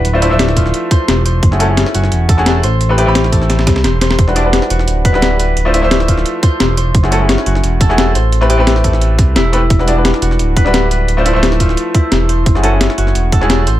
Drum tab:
HH |x-x-x-x-x-x-x-x-|x-x-x-x-x-x-x-x-|x-x-x-x-x-x-x-x-|x-x-x-x-x-x-x-x-|
SD |----oo-o----o---|-o--oo-o---oo---|----oo-oooooo-oo|-o--oo-o---oo---|
BD |------o---o-----|o---------o-----|------o---o-----|o---------o-----|

HH |x-x-x-x-x-x-x-x-|x-x-x-x-x-x-x-x-|x-x-x-x-x-x-x-x-|x-x-x-x-x-x-x-x-|
SD |----oo-o----o---|-o--oo-o---oo---|-o--oo-o----o---|-o--oo-o---oo---|
BD |------o---o-----|o---------o-----|------o---o-----|o---------o-----|

HH |x-x-x-x-x-x-x-x-|x-x-x-x-x-x-x-x-|
SD |----oo-o----o---|-o--oo-o---oo---|
BD |------o---o-----|o---------o-----|